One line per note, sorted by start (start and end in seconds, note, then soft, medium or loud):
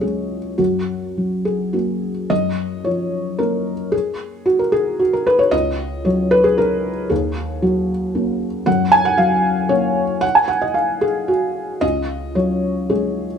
0.00 0.55 C#2 soft
0.00 0.36 F#3 soft
0.00 0.54 G#3 soft
0.00 0.55 C#4 soft
0.00 0.58 G#4 medium
0.00 0.61 C#5 medium
0.00 0.61 D#5 medium
0.58 2.26 F#2 soft
0.58 1.44 F#4 medium
1.18 2.09 F#3 soft
1.45 1.74 G#4 medium
1.73 2.26 A#3 soft
1.73 2.26 C#4 soft
1.73 2.30 F#4 soft
2.30 3.88 F#2 soft
2.30 2.85 D#5 loud
2.85 3.71 F3 soft
2.85 3.38 C#5 medium
3.39 5.49 A#3 soft
3.39 5.49 C#4 soft
3.39 3.92 A#4 medium
3.92 4.46 G#4 medium
4.46 4.59 F#4 medium
4.59 4.73 A#4 medium
4.72 4.99 G#4 medium
4.99 5.13 F#4 medium
5.13 5.26 A#4 medium
5.27 5.40 B4 loud
5.39 5.52 C#5 medium
5.51 7.06 C#2 medium
5.51 6.05 D#5 loud
6.05 6.90 F#3 soft
6.05 6.32 C#5 medium
6.31 6.45 B4 loud
6.44 6.58 G#4 medium
6.58 7.07 C#4 soft
6.58 7.10 A#4 medium
7.10 8.62 D#2 medium
7.10 7.62 G#4 medium
7.62 8.46 F#3 soft
7.62 7.88 F#4 medium
8.15 8.63 A#3 soft
8.15 8.63 C#4 soft
8.66 10.19 F#2 medium
8.66 8.92 F#5 medium
8.92 9.05 G#5 loud
9.05 9.18 F#5 medium
9.18 10.01 F#3 soft
9.18 9.70 F5 medium
9.69 11.78 A#3 soft
9.69 11.78 C#4 soft
9.69 10.22 C#5 medium
10.21 10.35 F#5 loud
10.35 10.49 G#5 medium
10.48 10.62 F#5 medium
10.62 10.75 D#5 medium
10.74 11.02 F5 medium
11.01 11.29 G#4 medium
11.28 11.82 F#4 medium
11.81 13.38 C#2 medium
11.81 12.35 D#5 loud
12.35 13.25 F#3 soft
12.35 12.90 C#5 medium
12.90 13.38 G#3 soft
12.90 13.38 C#4 soft
12.90 13.38 G#4 medium